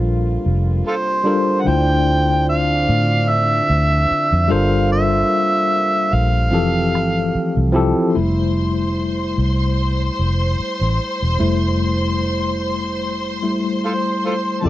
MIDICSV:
0, 0, Header, 1, 7, 480
1, 0, Start_track
1, 0, Key_signature, -1, "major"
1, 0, Tempo, 810811
1, 986, Time_signature, 4, 2, 24, 8
1, 8699, End_track
2, 0, Start_track
2, 0, Title_t, "String section"
2, 0, Program_c, 0, 48
2, 4821, Note_on_c, 0, 72, 65
2, 4821, Note_on_c, 0, 84, 70
2, 8641, Note_off_c, 0, 72, 0
2, 8641, Note_off_c, 0, 84, 0
2, 8665, Note_on_c, 0, 81, 85
2, 8667, Note_on_c, 0, 69, 77
2, 8699, Note_off_c, 0, 69, 0
2, 8699, Note_off_c, 0, 81, 0
2, 8699, End_track
3, 0, Start_track
3, 0, Title_t, "Harmonica"
3, 0, Program_c, 1, 22
3, 517, Note_on_c, 1, 65, 68
3, 517, Note_on_c, 1, 69, 68
3, 517, Note_on_c, 1, 72, 97
3, 560, Note_off_c, 1, 65, 0
3, 560, Note_off_c, 1, 69, 0
3, 955, Note_on_c, 1, 78, 78
3, 964, Note_off_c, 1, 72, 0
3, 994, Note_on_c, 1, 79, 121
3, 1002, Note_off_c, 1, 78, 0
3, 1469, Note_off_c, 1, 79, 0
3, 1476, Note_on_c, 1, 77, 116
3, 1951, Note_on_c, 1, 76, 112
3, 1960, Note_off_c, 1, 77, 0
3, 2672, Note_on_c, 1, 77, 93
3, 2681, Note_off_c, 1, 76, 0
3, 2908, Note_off_c, 1, 77, 0
3, 2916, Note_on_c, 1, 76, 106
3, 3634, Note_on_c, 1, 77, 102
3, 3643, Note_off_c, 1, 76, 0
3, 4589, Note_off_c, 1, 77, 0
3, 8198, Note_on_c, 1, 65, 53
3, 8198, Note_on_c, 1, 69, 53
3, 8198, Note_on_c, 1, 72, 75
3, 8240, Note_off_c, 1, 69, 0
3, 8246, Note_off_c, 1, 65, 0
3, 8416, Note_off_c, 1, 72, 0
3, 8440, Note_on_c, 1, 65, 49
3, 8440, Note_on_c, 1, 69, 49
3, 8440, Note_on_c, 1, 72, 70
3, 8488, Note_off_c, 1, 69, 0
3, 8490, Note_off_c, 1, 65, 0
3, 8691, Note_off_c, 1, 72, 0
3, 8699, End_track
4, 0, Start_track
4, 0, Title_t, "Tine electric piano"
4, 0, Program_c, 2, 4
4, 0, Control_c, 2, 64, 127
4, 0, Note_on_c, 2, 62, 82
4, 0, Note_on_c, 2, 65, 79
4, 0, Note_on_c, 2, 69, 77
4, 0, Note_on_c, 2, 70, 72
4, 0, Note_on_c, 2, 72, 95
4, 732, Note_on_c, 2, 55, 83
4, 737, Note_off_c, 2, 62, 0
4, 737, Note_on_c, 2, 62, 79
4, 741, Note_off_c, 2, 65, 0
4, 741, Note_on_c, 2, 65, 73
4, 746, Note_off_c, 2, 69, 0
4, 746, Note_on_c, 2, 69, 74
4, 749, Note_off_c, 2, 70, 0
4, 749, Note_on_c, 2, 70, 76
4, 755, Note_off_c, 2, 72, 0
4, 755, Note_on_c, 2, 72, 95
4, 904, Note_off_c, 2, 55, 0
4, 906, Note_off_c, 2, 62, 0
4, 908, Note_off_c, 2, 65, 0
4, 910, Note_off_c, 2, 69, 0
4, 912, Note_off_c, 2, 70, 0
4, 915, Note_off_c, 2, 72, 0
4, 972, Note_on_c, 2, 50, 78
4, 978, Note_on_c, 2, 62, 60
4, 984, Note_on_c, 2, 64, 65
4, 990, Note_on_c, 2, 65, 65
4, 992, Control_c, 2, 64, 0
4, 995, Note_on_c, 2, 72, 79
4, 1093, Control_c, 2, 64, 127
4, 1617, Note_off_c, 2, 50, 0
4, 1620, Note_off_c, 2, 62, 0
4, 1623, Note_off_c, 2, 64, 0
4, 1626, Note_off_c, 2, 65, 0
4, 1629, Note_off_c, 2, 72, 0
4, 2651, Note_on_c, 2, 55, 91
4, 2655, Note_on_c, 2, 62, 77
4, 2661, Note_on_c, 2, 65, 74
4, 2665, Note_on_c, 2, 69, 79
4, 2669, Note_on_c, 2, 70, 73
4, 2673, Control_c, 2, 64, 0
4, 2673, Note_on_c, 2, 72, 97
4, 2765, Control_c, 2, 64, 127
4, 3429, Note_off_c, 2, 55, 0
4, 3432, Note_off_c, 2, 62, 0
4, 3434, Note_off_c, 2, 65, 0
4, 3436, Note_off_c, 2, 69, 0
4, 3439, Note_off_c, 2, 70, 0
4, 3441, Note_off_c, 2, 72, 0
4, 3852, Note_on_c, 2, 53, 84
4, 3856, Note_on_c, 2, 60, 69
4, 3863, Note_on_c, 2, 52, 77
4, 3868, Note_on_c, 2, 67, 75
4, 3872, Control_c, 2, 64, 0
4, 3874, Note_on_c, 2, 69, 86
4, 3974, Control_c, 2, 64, 127
4, 4442, Note_off_c, 2, 53, 0
4, 4444, Note_off_c, 2, 60, 0
4, 4448, Note_off_c, 2, 52, 0
4, 4450, Note_off_c, 2, 67, 0
4, 4453, Note_off_c, 2, 69, 0
4, 4572, Note_on_c, 2, 53, 96
4, 4577, Note_on_c, 2, 60, 87
4, 4581, Note_on_c, 2, 64, 86
4, 4588, Note_on_c, 2, 67, 90
4, 4593, Note_on_c, 2, 69, 101
4, 4743, Note_off_c, 2, 53, 0
4, 4745, Note_off_c, 2, 60, 0
4, 4747, Note_off_c, 2, 64, 0
4, 4750, Note_off_c, 2, 67, 0
4, 4753, Note_off_c, 2, 69, 0
4, 4821, Note_on_c, 2, 55, 50
4, 4826, Note_on_c, 2, 57, 44
4, 4828, Note_on_c, 2, 64, 53
4, 4832, Control_c, 2, 64, 0
4, 4934, Control_c, 2, 64, 127
4, 6720, Note_off_c, 2, 55, 0
4, 6722, Note_off_c, 2, 57, 0
4, 6723, Note_off_c, 2, 64, 0
4, 6742, Note_on_c, 2, 55, 46
4, 6746, Note_on_c, 2, 57, 50
4, 6749, Note_on_c, 2, 64, 57
4, 7440, Note_off_c, 2, 55, 0
4, 7442, Note_off_c, 2, 57, 0
4, 7444, Note_off_c, 2, 64, 0
4, 7947, Note_on_c, 2, 55, 43
4, 7949, Note_on_c, 2, 57, 38
4, 7952, Note_on_c, 2, 64, 42
4, 8163, Note_off_c, 2, 55, 0
4, 8164, Note_off_c, 2, 57, 0
4, 8165, Note_off_c, 2, 64, 0
4, 8656, Note_on_c, 2, 53, 69
4, 8661, Note_on_c, 2, 60, 52
4, 8666, Note_on_c, 2, 64, 60
4, 8672, Note_on_c, 2, 67, 54
4, 8675, Control_c, 2, 64, 0
4, 8677, Note_on_c, 2, 69, 69
4, 8699, Note_off_c, 2, 53, 0
4, 8699, Note_off_c, 2, 60, 0
4, 8699, Note_off_c, 2, 64, 0
4, 8699, Note_off_c, 2, 67, 0
4, 8699, Note_off_c, 2, 69, 0
4, 8699, End_track
5, 0, Start_track
5, 0, Title_t, "French horn section"
5, 0, Program_c, 3, 60
5, 0, Note_on_c, 3, 48, 71
5, 0, Note_on_c, 3, 55, 61
5, 0, Note_on_c, 3, 58, 70
5, 0, Note_on_c, 3, 65, 86
5, 964, Note_off_c, 3, 55, 0
5, 964, Note_off_c, 3, 58, 0
5, 965, Note_off_c, 3, 48, 0
5, 965, Note_off_c, 3, 65, 0
5, 986, Note_on_c, 3, 62, 98
5, 987, Note_on_c, 3, 53, 76
5, 988, Note_on_c, 3, 50, 89
5, 988, Note_on_c, 3, 60, 73
5, 2648, Note_off_c, 3, 62, 0
5, 2649, Note_off_c, 3, 50, 0
5, 2649, Note_off_c, 3, 53, 0
5, 2649, Note_off_c, 3, 60, 0
5, 2664, Note_on_c, 3, 48, 73
5, 2664, Note_on_c, 3, 65, 82
5, 2665, Note_on_c, 3, 55, 71
5, 2665, Note_on_c, 3, 58, 67
5, 3852, Note_off_c, 3, 48, 0
5, 3852, Note_off_c, 3, 58, 0
5, 3852, Note_off_c, 3, 65, 0
5, 3867, Note_on_c, 3, 60, 68
5, 3869, Note_on_c, 3, 57, 70
5, 3869, Note_on_c, 3, 67, 79
5, 4803, Note_off_c, 3, 55, 0
5, 4816, Note_off_c, 3, 60, 0
5, 4817, Note_off_c, 3, 57, 0
5, 4817, Note_off_c, 3, 67, 0
5, 8699, End_track
6, 0, Start_track
6, 0, Title_t, "Fingered electric bass"
6, 0, Program_c, 4, 33
6, 0, Note_on_c, 4, 34, 86
6, 215, Note_off_c, 4, 34, 0
6, 272, Note_on_c, 4, 29, 81
6, 482, Note_off_c, 4, 29, 0
6, 990, Note_on_c, 4, 38, 94
6, 1684, Note_off_c, 4, 38, 0
6, 1711, Note_on_c, 4, 45, 95
6, 2132, Note_off_c, 4, 45, 0
6, 2189, Note_on_c, 4, 38, 88
6, 2399, Note_off_c, 4, 38, 0
6, 2561, Note_on_c, 4, 41, 93
6, 2655, Note_off_c, 4, 41, 0
6, 2670, Note_on_c, 4, 31, 99
6, 3092, Note_off_c, 4, 31, 0
6, 3629, Note_on_c, 4, 34, 100
6, 3870, Note_off_c, 4, 34, 0
6, 3870, Note_on_c, 4, 29, 111
6, 4111, Note_off_c, 4, 29, 0
6, 4111, Note_on_c, 4, 31, 78
6, 4320, Note_off_c, 4, 31, 0
6, 4480, Note_on_c, 4, 36, 88
6, 4690, Note_off_c, 4, 36, 0
6, 4834, Note_on_c, 4, 29, 80
6, 5525, Note_off_c, 4, 29, 0
6, 5552, Note_on_c, 4, 36, 88
6, 5973, Note_off_c, 4, 36, 0
6, 6034, Note_on_c, 4, 29, 90
6, 6242, Note_off_c, 4, 29, 0
6, 6402, Note_on_c, 4, 33, 94
6, 6496, Note_off_c, 4, 33, 0
6, 6645, Note_on_c, 4, 28, 81
6, 6738, Note_off_c, 4, 28, 0
6, 6754, Note_on_c, 4, 29, 89
6, 7952, Note_off_c, 4, 29, 0
6, 7952, Note_on_c, 4, 33, 84
6, 8162, Note_off_c, 4, 33, 0
6, 8675, Note_on_c, 4, 29, 88
6, 8699, Note_off_c, 4, 29, 0
6, 8699, End_track
7, 0, Start_track
7, 0, Title_t, "Muted fingered electric bass strokes"
7, 2433, Note_on_c, 9, 29, 47
7, 2493, Note_off_c, 9, 29, 0
7, 4351, Note_on_c, 9, 29, 47
7, 4410, Note_off_c, 9, 29, 0
7, 6273, Note_on_c, 9, 29, 43
7, 6332, Note_off_c, 9, 29, 0
7, 8699, End_track
0, 0, End_of_file